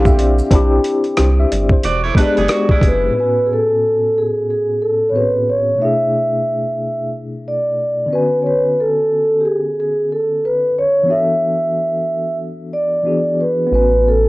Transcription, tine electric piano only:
Already playing: C4 D4 E4 G4 F5
0.06 E5
0.19 D5
0.51 C4 D4 E4
0.55 G4
1.19 C5
1.40 E5
1.51 D5
1.73 C5
2.15 G#3 B3 D4
2.20 G4
2.27 G#4
3.11 A2 B3
3.15 C4 F#4
3.20 C#4 G#5
5.12 A2 B3 C4 F#4
5.17 G#4
5.21 C#4
5.75 B2 A3
5.80 D4 E4
5.85 G#4
8.06 D3 B3
8.11 C#4 F#4
8.15 G#5
11.03 E3 B3
11.08 D4 F#4
11.12 A4
13.03 E3 B3 D4 F#4
13.08 G#4
13.67 B3 C#4
13.73 F#4 G#5

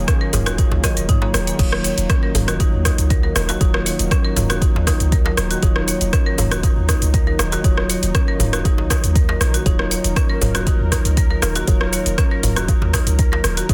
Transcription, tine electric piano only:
Already playing: F#3 F4 C#5
0.33 F#3 F4 C#5
0.84 F#3 F4 C#5
1.09 F#3 F4 C#5
1.22 F#3 F4 C#5
1.59 F#3 F4 C#5
2.35 F#3 F4 C#5
3.61 F#3 F4 C#5
4.37 F#3 F4 C#5
5.63 F#3 F4 C#5
6.38 F#3 F4 C#5
7.64 F#3 F4 C#5
8.40 F#3 F4 C#5
9.66 F#3 F4 C#5
10.42 F#3 F4 C#5
11.68 F#3 F4 C#5
12.43 F#3 F4 C#5
13.69 F#3 F4 C#5

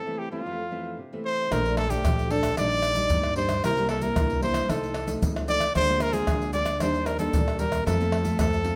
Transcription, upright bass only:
1.52 A#1
2.05 A#1
2.58 A#1
3.11 G2
3.64 C2
4.17 C2
4.69 C2
5.22 C#2
5.75 D2
6.28 D2
6.81 D#2
7.34 D#2
7.87 F2
8.40 F2

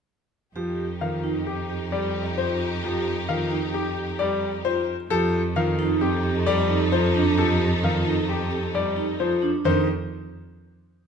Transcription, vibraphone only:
0.56 G4
1.01 F4
1.24 D#4
1.69 G4
2.37 F4
2.83 G4
3.28 F4
3.51 D#4
3.97 G4
4.65 F4
5.10 G4
5.56 F4
5.79 D#4
6.01 C4
6.24 G4
6.69 D#4
6.92 F4
7.15 D4
7.38 G4
7.83 F4
8.06 D#4
8.28 C4
8.51 G4
8.97 D#4
9.19 F4
9.42 D4
9.65 D#4

